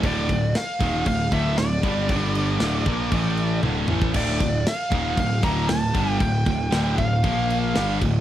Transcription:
<<
  \new Staff \with { instrumentName = "Lead electric guitar" } { \time 4/4 \key d \minor \tempo 4 = 116 d''4 f''4 f''8 e''8 d''4~ | d''2. r4 | d''4 f''4 f''8 bes''8 a''4 | g''4. f''2 r8 | }
  \new Staff \with { instrumentName = "Distorted electric guitar" } { \clef bass \time 4/4 \key d \minor <d, a, d>8 <d, a,>8 r8 <ees, bes, ees>8 <d, a,>8 <d, a, d>8 <d, a,>8 <g, d g>8 | <g, d g>4 <d, a, d>8 <bes, f bes>8 <a, e a>4 <d, a, d>8 <a, e a>8 | <d, a, d>8 <d, a,>8 r8 <ees, bes, ees>8 <d, a,>8 <d, a, d>8 <d, a,>8 <g, d g>8 | <d, a,>8 <d, a,>8 <d, a, d>8 <d, a,>8 <bes, f bes>4 <g, d g>8 <d, a,>8 | }
  \new Staff \with { instrumentName = "Distorted electric guitar" } { \clef bass \time 4/4 \key d \minor <d, a, d>8 <d, a,>8 r8 <ees, bes, ees>8 <d, a,>8 <d, a, d>8 <d, a,>8 <g, d g>8 | <g, d g>4 <d, a, d>8 <bes, f bes>8 <a, e a>4 <d, a, d>8 <a, e a>8 | <d, a, d>8 <d, a,>8 r8 <ees, bes, ees>8 <d, a,>8 <d, a, d>8 <d, a,>8 <g, d g>8 | <d, a,>8 <d, a,>8 <d, a, d>8 <d, a,>8 <bes, f bes>4 <g, d g>8 <d, a,>8 | }
  \new Staff \with { instrumentName = "Distorted electric guitar" } { \clef bass \time 4/4 \key d \minor <d, a, d>8 <d, a,>8 r8 <ees, bes, ees>8 <d, a,>8 <d, a, d>8 <d, a,>8 <g, d g>8 | <g, d g>4 <d, a, d>8 <bes, f bes>8 <a, e a>4 <d, a, d>8 <a, e a>8 | <d, a, d>8 <d, a,>8 r8 <ees, bes, ees>8 <d, a,>8 <d, a, d>8 <d, a,>8 <g, d g>8 | <d, a,>8 <d, a,>8 <d, a, d>8 <d, a,>8 <bes, f bes>4 <g, d g>8 <d, a,>8 | }
  \new Staff \with { instrumentName = "Picked electric bass" } { \clef bass \time 4/4 \key d \minor d,,8 d,,8 r8 ees,,8 d,,8 d,,8 d,,8 g,,8 | g,,4 d,,8 bes,,8 a,,4 d,,8 a,,8 | d,,8 d,,8 r8 ees,,8 d,,8 d,,8 d,,8 g,,8 | d,,8 d,,8 d,,8 d,,8 bes,,4 g,,8 d,,8 | }
  \new DrumStaff \with { instrumentName = "Drums" } \drummode { \time 4/4 <cymc bd>8 <cymc bd>8 <cymc sn>8 <cymc bd>8 <cymc bd>8 <cymc bd>8 <cymc sn>8 <cymc bd>8 | <cymc bd>8 cymc8 <cymc sn>8 <cymc bd>8 <cymc bd>8 cymc8 tommh8 toml16 bd16 | <cymc bd>8 <cymc bd>8 <cymc sn>8 <cymc bd>8 <cymc bd>8 <cymc bd>8 <cymc sn>8 <cymc bd>8 | <cymc bd>8 <cymc bd>8 <cymc sn>8 <cymc bd>8 <cymc bd>8 cymc8 <cymc sn>8 <cymc bd>8 | }
>>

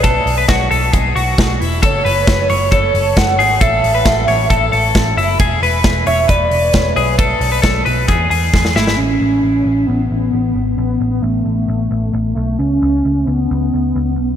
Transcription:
<<
  \new Staff \with { instrumentName = "Clean electric guitar" } { \time 4/4 \key a \major \tempo 4 = 134 a'8. b'16 fis'8 a'8 gis'8 fis'4 e'8 | a'8 b'4 cis''8 a'4. gis'8 | a'8. b'16 a'8 cis''8 a'8 a'4 e'8 | gis'8 b'4 cis''8 b'4. gis'8 |
a'8. b'16 a'8 b'8 gis'8 gis'4 e'8 | r1 | r1 | r1 | }
  \new Staff \with { instrumentName = "Soft synth lead" } { \time 4/4 \key a \major b'8 r2. r8 | cis''2 cis''4 fis''4 | e''2. r4 | r4. e''8 d''4 cis''8 b'8~ |
b'8 r2. a16 a16 | cis'2 b2 | b8. b16 a2~ a8 a16 a16 | cis'4. b2~ b8 | }
  \new Staff \with { instrumentName = "Picked electric bass" } { \clef bass \time 4/4 \key a \major b,,8 b,,8 b,,8 b,,8 b,,8 b,,8 b,,8 e,,8 | fis,,8 fis,,8 fis,,8 fis,,8 fis,,8 fis,,8 fis,,8 gis,,8 | a,,8 a,,8 a,,8 a,,8 a,,8 a,,8 a,,8 fis,,8 | e,,8 e,,8 e,,8 e,,8 e,,8 e,,8 e,,8 b,,8~ |
b,,8 b,,8 b,,8 b,,8 e,8 e,8 e,8 gis,,8 | a,,8 a,,8 a,,8 a,,8 a,,8 a,,8 a,,8 gis,,8 | a,,8 a,,8 a,,8 a,,8 a,,8 a,,8 a,,8 b,,8 | cis,8 cis,8 cis,8 cis,8 cis,8 cis,8 cis,8 b,,8 | }
  \new DrumStaff \with { instrumentName = "Drums" } \drummode { \time 4/4 <hhp bd cymr>8 hho8 <hhp bd cymr sn>8 hho8 <hhp bd cymr>8 hho8 <hhp bd cymr sn>8 hho8 | <hhp bd cymr>8 hho8 <hhp bd cymr sn>8 hho8 <hhp bd cymr>8 hho8 <hhp bd cymr sn>8 hho8 | <hhp bd cymr>8 hho8 <hhp bd cymr sn>8 hho8 <hhp bd cymr>8 hho8 <hhp bd cymr sn>8 hho8 | <hhp bd cymr>8 hho8 <hhp bd cymr sn>8 hho8 <hhp bd cymr>8 hho8 <hhp bd cymr sn>8 hho8 |
<hhp bd cymr>8 hho8 <hhp bd cymr sn>8 hho8 <hhp bd cymr>8 hho8 <bd sn>16 sn16 sn16 sn16 | r4 r4 r4 r4 | r4 r4 r4 r4 | r4 r4 r4 r4 | }
>>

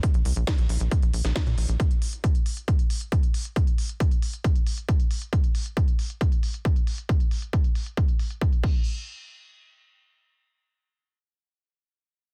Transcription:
<<
  \new Staff \with { instrumentName = "Analog synth bass" } { \clef bass \time 4/4 \key bes \minor \tempo 4 = 136 r16 bes,,16 c,16 bes,,16 r16 bes,,16 bes,,16 bes,,16 r16 bes,,16 bes,,16 bes,,16 r16 bes,16 bes,,16 bes,,16 | r1 | r1 | r1 |
r1 | r1 | r1 | }
  \new DrumStaff \with { instrumentName = "Drums" } \drummode { \time 4/4 <hh bd>16 hh16 hho16 hh16 <hh bd sn>16 hh16 hho16 hh16 <hh bd>16 hh16 hho16 <hh sn>16 <hh bd sn>16 hh16 hho16 hh16 | <hh bd>16 hh16 hho16 hh16 <hh bd>16 hh16 hho16 hh16 <hh bd>16 hh16 hho16 hh16 <hh bd>16 hh16 hho16 hh16 | <hh bd>16 hh16 hho16 hh16 <hh bd>16 hh16 hho16 hh16 <hh bd>16 hh16 hho16 hh16 <hh bd>16 hh16 hho16 hh16 | <hh bd>16 hh16 hho16 hh16 <hh bd>16 hh16 hho16 hh16 <hh bd>16 hh16 hho16 hh16 <hh bd>16 hh16 hho16 hh16 |
<hh bd>16 hh16 hho16 hh16 <hh bd>16 hh16 hho16 hh16 <hh bd>16 hh16 hho16 hh16 <hh bd>16 hh16 <cymc bd>8 | r4 r4 r4 r4 | r4 r4 r4 r4 | }
>>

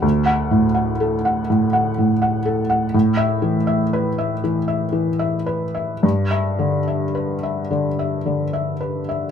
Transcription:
\new Staff \with { instrumentName = "Felt piano" } { \time 4/4 \key g \major \tempo 4 = 79 << { \tuplet 3/2 { r8 fis''4 } r2. | \tuplet 3/2 { r8 e''4 } r2. | \tuplet 3/2 { r8 e''4 } r2. | } \\ { \tuplet 3/2 { d,4 a,8 fis''8 a'8 fis''8 a,8 fis''8 a,8 fis''8 a'8 fis''8 } | \tuplet 3/2 { a,4 e8 e''8 b'8 e''8 e8 e''8 e8 e''8 b'8 e''8 } | \tuplet 3/2 { g,4 d8 e''8 b'8 e''8 d8 e''8 d8 e''8 b'8 e''8 } | } >> }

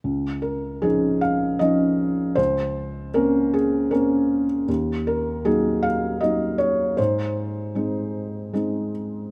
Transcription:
<<
  \new Staff \with { instrumentName = "Felt piano" } { \time 3/4 \key des \major \tempo 4 = 78 r8 bes'8 aes'8 f''8 ees''4 | c''4 bes'8 aes'8 bes'8. r16 | r8 bes'8 aes'8 f''8 ees''8 des''8 | c''2~ c''8 r8 | }
  \new Staff \with { instrumentName = "Felt piano" } { \time 3/4 \key des \major des,4 <f des' ees'>4 <f des' ees'>4 | des,4 <bes c' des'>4 <bes c' des'>4 | ees,4 <ges bes ees'>4 <ges bes ees'>4 | aes,4 <aes c' ees'>4 <aes c' ees'>4 | }
>>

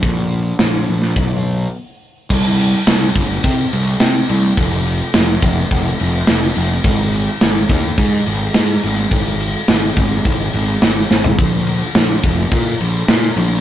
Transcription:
<<
  \new Staff \with { instrumentName = "Picked electric bass" } { \clef bass \time 4/4 \key c \minor \tempo 4 = 106 bes,,4 bes,,8 bes,,8 b,,4 r4 | c,4 c,8 g,,8 c8 c,8 c8 c,8 | f,,4 f,,8 f,,8 f,,8 f,,8 f,,8 f,,8 | aes,,4 aes,,8 ees,8 aes,8 aes,,8 aes,8 aes,,8 |
aes,,4 aes,,8 aes,,8 aes,,8 aes,,8 aes,,8 aes,,8 | bes,,4 bes,,8 f,,8 bes,8 bes,,8 bes,8 bes,,8 | }
  \new DrumStaff \with { instrumentName = "Drums" } \drummode { \time 4/4 <hho bd>4 <hho sn>8. sn16 <hho bd>4 r4 | <cymc bd>8 cymc8 <cymc sn>8 <cymc bd>8 <cymc bd>8 cymc8 <cymc sn>8 cymc8 | <cymc bd>8 cymc8 <cymc sn>8 <cymc bd>8 <cymc bd>8 cymc8 <cymc sn>8 cymc8 | <cymc bd>8 cymc8 <cymc sn>8 <cymc bd>8 <cymc bd>8 cymc8 <cymc sn>8 cymc8 |
<cymc bd>8 cymc8 <cymc sn>8 <cymc bd>8 <cymc bd>8 cymc8 <cymc sn>8 sn16 tomfh16 | <cymc bd>8 cymc8 <cymc sn>8 <cymc bd>8 <cymc bd>8 cymc8 <cymc sn>8 cymc8 | }
>>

